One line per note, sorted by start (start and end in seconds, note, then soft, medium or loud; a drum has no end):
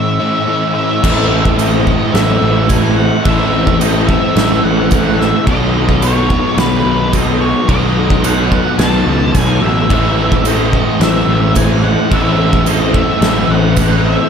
0.00 0.18 A2 medium
0.00 0.18 E3 medium
0.00 0.19 A3 medium
0.00 0.19 C#4 medium
0.00 0.17 E4 loud
0.00 0.71 E5 medium
0.19 0.46 A2 medium
0.19 0.47 E3 medium
0.19 0.46 A3 medium
0.19 0.46 C#4 medium
0.19 0.45 E4 medium
0.47 1.01 A2 medium
0.47 1.02 E3 medium
0.47 1.02 A3 medium
0.47 1.03 C#4 medium
0.47 1.03 E4 medium
0.75 1.58 E5 medium
1.03 1.94 A1 medium
1.03 2.13 A2 medium
1.03 2.13 E3 loud
1.03 1.33 A3 medium
1.03 1.32 C4 loud
1.03 1.31 E4 loud
1.03 1.30 A4 loud
1.03 kick loud
1.03 crash loud
1.03 crash medium
1.30 1.57 A3 medium
1.30 1.58 C4 medium
1.30 1.59 E4 medium
1.30 1.60 A4 medium
1.45 kick medium
1.58 2.14 A3 medium
1.58 2.14 C4 medium
1.58 2.14 E4 medium
1.58 2.16 A4 medium
1.58 2.13 D#5 loud
1.58 tambourine medium
1.58 crash medium
1.86 3.24 A2 medium
1.86 3.24 E3 medium
1.86 3.26 A3 medium
1.86 3.24 C4 medium
1.86 3.23 E4 medium
1.86 kick medium
2.13 2.37 A1 loud
2.13 2.97 A2 medium
2.13 2.97 E3 medium
2.13 2.68 A3 medium
2.13 2.69 C4 loud
2.13 2.70 E4 loud
2.13 2.71 A4 loud
2.13 2.71 E5 loud
2.13 snare loud
2.13 crash medium
2.42 3.10 A1 medium
2.68 3.25 A3 medium
2.68 3.25 C4 medium
2.68 3.26 E4 medium
2.68 3.27 A4 medium
2.68 2.96 G#5 loud
2.68 kick medium
2.68 tambourine medium
2.68 crash medium
2.96 3.25 F#5 medium
3.24 4.16 A1 medium
3.24 3.80 A2 medium
3.24 3.81 E3 medium
3.24 3.55 A3 loud
3.24 3.53 C4 loud
3.24 3.52 E4 medium
3.24 3.51 A4 loud
3.24 3.79 E5 loud
3.24 kick loud
3.24 crash medium
3.51 3.79 A3 medium
3.51 3.80 C4 medium
3.51 3.81 E4 medium
3.51 3.83 A4 medium
3.67 kick medium
3.79 4.37 A3 medium
3.79 4.36 C4 medium
3.79 4.37 E4 medium
3.79 4.38 A4 medium
3.79 4.06 D#5 loud
3.79 tambourine medium
3.79 crash medium
4.07 5.46 E3 medium
4.07 5.48 A3 medium
4.07 5.45 C4 medium
4.07 5.45 E4 medium
4.07 4.65 E5 loud
4.07 kick medium
4.11 5.46 A2 medium
4.35 4.58 A1 loud
4.35 5.19 A2 medium
4.35 5.19 E3 medium
4.35 4.91 A3 loud
4.35 4.91 C4 medium
4.35 4.92 E4 loud
4.35 4.94 A4 loud
4.35 snare loud
4.35 crash medium
4.63 5.31 A1 loud
4.63 5.21 F#5 loud
4.91 5.47 A3 medium
4.91 5.46 C4 medium
4.91 5.46 E4 loud
4.91 5.49 A4 loud
4.91 kick loud
4.91 tambourine medium
4.91 crash medium
5.19 5.47 E5 loud
5.19 snare soft
5.46 6.37 B1 loud
5.46 6.08 B2 loud
5.46 6.02 D#3 loud
5.46 5.77 F#3 loud
5.46 6.30 A3 loud
5.46 5.76 B3 loud
5.46 5.75 D#4 loud
5.46 6.29 F#4 loud
5.46 5.74 A4 loud
5.46 6.02 D#5 loud
5.46 kick loud
5.46 crash medium
5.74 6.02 F#3 medium
5.74 6.03 B3 medium
5.74 6.04 D#4 medium
5.74 6.05 A4 medium
5.89 kick medium
6.02 6.57 F#3 medium
6.02 6.58 B3 medium
6.02 6.59 D#4 medium
6.02 6.60 A4 medium
6.02 6.59 C#5 loud
6.02 tambourine loud
6.02 crash medium
6.29 7.66 B2 medium
6.29 7.66 D#3 medium
6.29 7.68 A3 medium
6.29 7.67 B3 medium
6.29 7.66 F#4 medium
6.29 kick medium
6.57 6.80 B1 loud
6.57 7.40 B2 medium
6.57 7.41 D#3 medium
6.57 7.11 F#3 medium
6.57 7.13 B3 loud
6.57 7.14 D#4 loud
6.57 7.15 A4 medium
6.57 7.15 B4 medium
6.57 snare loud
6.57 crash medium
6.85 7.52 B1 medium
7.12 7.68 F#3 medium
7.12 7.68 B3 medium
7.12 7.69 D#4 medium
7.12 7.70 A4 medium
7.12 7.38 D#5 loud
7.12 kick medium
7.12 tambourine medium
7.12 crash medium
7.41 7.69 C#5 loud
7.67 8.58 B1 loud
7.67 8.23 B2 medium
7.67 8.24 D#3 medium
7.67 7.98 F#3 loud
7.67 8.51 A3 medium
7.67 7.97 B3 loud
7.67 7.96 D#4 loud
7.67 8.49 F#4 loud
7.67 7.95 A4 loud
7.67 8.26 D#5 loud
7.67 kick medium
7.67 crash medium
7.96 8.22 F#3 medium
7.96 8.23 B3 medium
7.96 8.24 D#4 medium
7.96 8.26 A4 medium
8.10 kick medium
8.23 8.79 F#3 medium
8.23 8.80 B3 medium
8.23 8.80 D#4 medium
8.23 8.82 A4 medium
8.23 8.78 F#5 loud
8.23 tambourine loud
8.23 crash medium
8.51 9.89 B2 medium
8.51 9.88 D#3 medium
8.51 9.91 A3 medium
8.51 9.88 B3 medium
8.51 9.88 F#4 medium
8.51 kick medium
8.78 9.01 B1 loud
8.78 9.62 B2 medium
8.78 9.62 D#3 medium
8.78 9.32 F#3 medium
8.78 9.34 B3 medium
8.78 9.35 D#4 loud
8.78 9.37 A4 loud
8.78 9.37 A5 loud
8.78 snare loud
8.78 crash medium
9.07 9.31 C#2 medium
9.34 9.59 B1 medium
9.34 9.87 F#3 medium
9.34 9.88 B3 medium
9.34 9.89 D#4 medium
9.34 9.91 A4 medium
9.34 9.64 G#5 loud
9.34 kick loud
9.34 tambourine medium
9.34 crash medium
9.62 9.87 A1 medium
9.62 10.47 E5 loud
9.88 10.80 A1 loud
9.88 10.99 A2 medium
9.88 11.00 E3 medium
9.88 10.19 A3 loud
9.88 10.18 C4 medium
9.88 10.17 E4 loud
9.88 10.16 A4 loud
9.88 kick loud
9.88 crash medium
10.16 10.44 A3 medium
10.16 10.45 C4 medium
10.16 10.46 E4 medium
10.16 10.47 A4 medium
10.32 kick medium
10.44 11.01 A3 medium
10.44 11.01 C4 medium
10.44 11.01 E4 medium
10.44 11.02 A4 medium
10.44 11.01 D#5 loud
10.44 tambourine loud
10.44 crash medium
10.73 12.09 A2 medium
10.73 12.10 E3 medium
10.73 12.12 A3 medium
10.73 12.10 C4 medium
10.73 12.09 E4 medium
10.73 kick medium
10.99 11.22 A1 loud
10.99 11.83 A2 medium
10.99 11.83 E3 loud
10.99 11.55 A3 loud
10.99 11.55 C4 loud
10.99 11.56 E4 medium
10.99 11.58 A4 loud
10.99 11.58 E5 medium
10.99 snare loud
10.99 crash medium
11.27 11.95 A1 loud
11.55 12.11 A3 medium
11.55 12.11 C4 medium
11.55 12.12 E4 medium
11.55 12.13 A4 medium
11.55 11.84 G#5 loud
11.55 kick medium
11.55 tambourine medium
11.55 crash medium
11.84 12.12 F#5 loud
12.10 13.01 A1 medium
12.10 12.65 A2 loud
12.10 12.66 E3 medium
12.10 12.41 A3 loud
12.10 12.39 C4 medium
12.10 12.38 E4 loud
12.10 12.38 A4 loud
12.10 12.67 E5 loud
12.10 kick loud
12.10 crash medium
12.38 12.66 A3 medium
12.38 12.66 C4 medium
12.38 12.67 E4 medium
12.38 12.69 A4 medium
12.53 kick medium
12.66 13.21 A3 medium
12.66 13.22 C4 medium
12.66 13.22 E4 medium
12.66 13.23 A4 medium
12.66 12.92 D#5 loud
12.66 tambourine medium
12.66 crash medium
12.93 14.29 A2 medium
12.93 14.29 E3 medium
12.93 14.29 A3 medium
12.93 14.29 C4 medium
12.93 14.29 E4 medium
12.93 13.51 E5 loud
12.93 kick medium
13.21 13.44 A1 loud
13.21 14.04 A2 loud
13.21 14.04 E3 loud
13.21 13.74 A3 loud
13.21 13.76 C4 loud
13.21 13.77 E4 loud
13.21 13.78 A4 medium
13.21 snare loud
13.21 crash medium
13.49 14.16 A1 loud
13.49 14.06 F#5 loud
13.75 14.29 A3 medium
13.75 14.29 C4 medium
13.75 14.29 E4 medium
13.75 14.29 A4 loud
13.75 kick medium
13.75 tambourine loud
13.75 crash medium
14.06 14.29 E5 medium